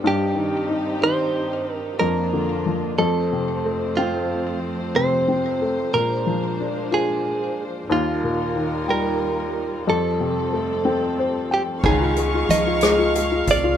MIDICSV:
0, 0, Header, 1, 6, 480
1, 0, Start_track
1, 0, Tempo, 655738
1, 31, Time_signature, 6, 3, 24, 8
1, 10080, End_track
2, 0, Start_track
2, 0, Title_t, "Clean electric guitar"
2, 0, Program_c, 0, 27
2, 54, Note_on_c, 0, 67, 68
2, 492, Note_off_c, 0, 67, 0
2, 758, Note_on_c, 0, 72, 88
2, 1278, Note_off_c, 0, 72, 0
2, 1278, Note_on_c, 0, 70, 88
2, 1457, Note_off_c, 0, 70, 0
2, 1460, Note_on_c, 0, 70, 87
2, 2154, Note_off_c, 0, 70, 0
2, 2185, Note_on_c, 0, 69, 74
2, 2697, Note_off_c, 0, 69, 0
2, 2906, Note_on_c, 0, 65, 69
2, 3357, Note_off_c, 0, 65, 0
2, 3632, Note_on_c, 0, 72, 82
2, 4345, Note_off_c, 0, 72, 0
2, 4347, Note_on_c, 0, 70, 95
2, 5038, Note_off_c, 0, 70, 0
2, 5080, Note_on_c, 0, 68, 72
2, 5584, Note_off_c, 0, 68, 0
2, 5799, Note_on_c, 0, 65, 79
2, 6518, Note_on_c, 0, 70, 80
2, 6534, Note_off_c, 0, 65, 0
2, 7241, Note_off_c, 0, 70, 0
2, 7244, Note_on_c, 0, 69, 73
2, 8407, Note_off_c, 0, 69, 0
2, 8445, Note_on_c, 0, 67, 57
2, 8508, Note_off_c, 0, 67, 0
2, 8680, Note_on_c, 0, 68, 79
2, 9152, Note_off_c, 0, 68, 0
2, 9155, Note_on_c, 0, 75, 81
2, 9885, Note_off_c, 0, 75, 0
2, 9888, Note_on_c, 0, 74, 85
2, 10080, Note_off_c, 0, 74, 0
2, 10080, End_track
3, 0, Start_track
3, 0, Title_t, "String section"
3, 0, Program_c, 1, 48
3, 0, Note_on_c, 1, 55, 53
3, 26, Note_on_c, 1, 63, 57
3, 28, Note_on_c, 1, 43, 59
3, 28, Note_on_c, 1, 67, 64
3, 29, Note_on_c, 1, 60, 55
3, 1440, Note_off_c, 1, 55, 0
3, 1452, Note_off_c, 1, 63, 0
3, 1453, Note_off_c, 1, 43, 0
3, 1453, Note_off_c, 1, 60, 0
3, 1453, Note_off_c, 1, 67, 0
3, 1467, Note_on_c, 1, 62, 53
3, 1468, Note_on_c, 1, 58, 49
3, 1470, Note_on_c, 1, 41, 54
3, 1470, Note_on_c, 1, 53, 57
3, 1470, Note_on_c, 1, 65, 63
3, 2180, Note_off_c, 1, 62, 0
3, 2181, Note_off_c, 1, 58, 0
3, 2182, Note_off_c, 1, 41, 0
3, 2182, Note_off_c, 1, 65, 0
3, 2184, Note_on_c, 1, 60, 60
3, 2185, Note_on_c, 1, 72, 65
3, 2187, Note_on_c, 1, 57, 53
3, 2190, Note_on_c, 1, 41, 57
3, 4323, Note_off_c, 1, 60, 0
3, 4325, Note_off_c, 1, 57, 0
3, 4326, Note_off_c, 1, 41, 0
3, 4341, Note_on_c, 1, 56, 56
3, 4345, Note_on_c, 1, 62, 53
3, 4346, Note_on_c, 1, 46, 53
3, 5756, Note_off_c, 1, 72, 0
3, 5758, Note_off_c, 1, 53, 0
3, 5769, Note_off_c, 1, 56, 0
3, 5770, Note_on_c, 1, 39, 57
3, 5770, Note_on_c, 1, 70, 71
3, 5771, Note_off_c, 1, 62, 0
3, 5772, Note_off_c, 1, 46, 0
3, 5772, Note_on_c, 1, 55, 51
3, 5774, Note_on_c, 1, 51, 58
3, 5775, Note_on_c, 1, 65, 59
3, 7204, Note_off_c, 1, 39, 0
3, 7204, Note_off_c, 1, 70, 0
3, 7207, Note_off_c, 1, 51, 0
3, 7207, Note_off_c, 1, 65, 0
3, 7231, Note_on_c, 1, 53, 53
3, 7232, Note_on_c, 1, 41, 62
3, 7232, Note_on_c, 1, 69, 69
3, 7234, Note_on_c, 1, 60, 56
3, 8632, Note_off_c, 1, 55, 0
3, 8656, Note_off_c, 1, 41, 0
3, 8656, Note_off_c, 1, 53, 0
3, 8656, Note_off_c, 1, 69, 0
3, 8658, Note_off_c, 1, 60, 0
3, 8665, Note_on_c, 1, 63, 52
3, 8670, Note_on_c, 1, 77, 59
3, 8672, Note_on_c, 1, 68, 62
3, 8672, Note_on_c, 1, 85, 67
3, 10080, Note_off_c, 1, 63, 0
3, 10080, Note_off_c, 1, 68, 0
3, 10080, Note_off_c, 1, 77, 0
3, 10080, Note_off_c, 1, 85, 0
3, 10080, End_track
4, 0, Start_track
4, 0, Title_t, "Upright piano"
4, 0, Program_c, 2, 0
4, 0, Control_c, 2, 64, 127
4, 29, Note_on_c, 2, 43, 71
4, 41, Control_c, 2, 64, 0
4, 171, Control_c, 2, 64, 127
4, 259, Note_on_c, 2, 51, 45
4, 499, Note_on_c, 2, 63, 48
4, 731, Note_off_c, 2, 51, 0
4, 742, Note_on_c, 2, 51, 54
4, 1434, Note_off_c, 2, 63, 0
4, 1439, Note_off_c, 2, 43, 0
4, 1444, Note_off_c, 2, 51, 0
4, 1468, Note_on_c, 2, 41, 63
4, 1478, Control_c, 2, 64, 0
4, 1609, Control_c, 2, 64, 127
4, 1708, Note_on_c, 2, 50, 46
4, 1947, Note_on_c, 2, 53, 48
4, 2166, Note_off_c, 2, 41, 0
4, 2174, Note_off_c, 2, 50, 0
4, 2180, Note_off_c, 2, 53, 0
4, 2186, Note_on_c, 2, 41, 66
4, 2197, Control_c, 2, 64, 0
4, 2324, Control_c, 2, 64, 127
4, 2433, Note_on_c, 2, 48, 41
4, 2674, Note_on_c, 2, 57, 42
4, 2916, Note_on_c, 2, 60, 51
4, 3361, Note_off_c, 2, 48, 0
4, 3597, Note_off_c, 2, 41, 0
4, 3602, Note_off_c, 2, 57, 0
4, 3626, Note_on_c, 2, 48, 61
4, 3843, Note_off_c, 2, 60, 0
4, 3867, Note_on_c, 2, 60, 42
4, 4111, Note_on_c, 2, 57, 43
4, 4325, Note_off_c, 2, 48, 0
4, 4332, Note_off_c, 2, 60, 0
4, 4342, Note_off_c, 2, 57, 0
4, 4350, Note_on_c, 2, 46, 63
4, 4356, Control_c, 2, 64, 0
4, 4467, Control_c, 2, 64, 127
4, 4587, Note_on_c, 2, 53, 47
4, 4831, Note_on_c, 2, 62, 46
4, 5062, Note_on_c, 2, 65, 55
4, 5518, Note_off_c, 2, 53, 0
4, 5759, Note_off_c, 2, 46, 0
4, 5760, Note_off_c, 2, 62, 0
4, 5763, Note_off_c, 2, 65, 0
4, 5780, Note_on_c, 2, 39, 68
4, 5798, Control_c, 2, 64, 0
4, 5940, Control_c, 2, 64, 127
4, 6031, Note_on_c, 2, 46, 46
4, 6265, Note_on_c, 2, 51, 46
4, 6500, Note_on_c, 2, 55, 54
4, 6960, Note_off_c, 2, 46, 0
4, 7195, Note_off_c, 2, 39, 0
4, 7198, Note_off_c, 2, 51, 0
4, 7202, Note_off_c, 2, 55, 0
4, 7228, Note_on_c, 2, 41, 59
4, 7236, Control_c, 2, 64, 0
4, 7358, Control_c, 2, 64, 127
4, 7467, Note_on_c, 2, 48, 45
4, 7709, Note_on_c, 2, 57, 49
4, 7943, Note_on_c, 2, 60, 53
4, 8190, Note_on_c, 2, 72, 57
4, 8399, Note_off_c, 2, 48, 0
4, 8413, Note_off_c, 2, 72, 0
4, 8426, Note_on_c, 2, 79, 53
4, 8640, Note_off_c, 2, 41, 0
4, 8640, Note_off_c, 2, 57, 0
4, 8644, Note_off_c, 2, 60, 0
4, 8650, Note_off_c, 2, 79, 0
4, 8669, Note_on_c, 2, 51, 66
4, 8677, Control_c, 2, 64, 0
4, 8789, Note_on_c, 2, 65, 39
4, 8793, Control_c, 2, 64, 127
4, 8911, Note_on_c, 2, 56, 53
4, 9024, Note_off_c, 2, 65, 0
4, 9035, Note_on_c, 2, 65, 40
4, 9153, Note_on_c, 2, 53, 47
4, 9262, Note_off_c, 2, 65, 0
4, 9273, Note_on_c, 2, 65, 45
4, 9379, Note_off_c, 2, 56, 0
4, 9390, Note_on_c, 2, 56, 65
4, 9494, Note_off_c, 2, 65, 0
4, 9505, Note_on_c, 2, 65, 50
4, 9621, Note_off_c, 2, 56, 0
4, 9632, Note_on_c, 2, 56, 50
4, 9735, Note_off_c, 2, 65, 0
4, 9746, Note_on_c, 2, 65, 47
4, 9973, Note_off_c, 2, 65, 0
4, 9984, Note_on_c, 2, 65, 52
4, 10080, Note_off_c, 2, 51, 0
4, 10080, Note_off_c, 2, 53, 0
4, 10080, Note_off_c, 2, 56, 0
4, 10080, Note_off_c, 2, 65, 0
4, 10080, End_track
5, 0, Start_track
5, 0, Title_t, "Upright bass"
5, 0, Program_c, 3, 32
5, 8664, Note_on_c, 3, 37, 93
5, 9118, Note_off_c, 3, 37, 0
5, 9144, Note_on_c, 3, 37, 81
5, 9838, Note_off_c, 3, 37, 0
5, 9866, Note_on_c, 3, 36, 90
5, 10080, Note_off_c, 3, 36, 0
5, 10080, End_track
6, 0, Start_track
6, 0, Title_t, "Drums"
6, 8660, Note_on_c, 9, 49, 75
6, 8665, Note_on_c, 9, 36, 106
6, 8734, Note_off_c, 9, 49, 0
6, 8738, Note_off_c, 9, 36, 0
6, 8903, Note_on_c, 9, 42, 39
6, 8977, Note_off_c, 9, 42, 0
6, 9151, Note_on_c, 9, 42, 49
6, 9225, Note_off_c, 9, 42, 0
6, 9376, Note_on_c, 9, 42, 56
6, 9391, Note_on_c, 9, 37, 88
6, 9449, Note_off_c, 9, 42, 0
6, 9464, Note_off_c, 9, 37, 0
6, 9628, Note_on_c, 9, 42, 49
6, 9701, Note_off_c, 9, 42, 0
6, 9862, Note_on_c, 9, 42, 45
6, 9864, Note_on_c, 9, 36, 75
6, 9935, Note_off_c, 9, 42, 0
6, 9937, Note_off_c, 9, 36, 0
6, 10080, End_track
0, 0, End_of_file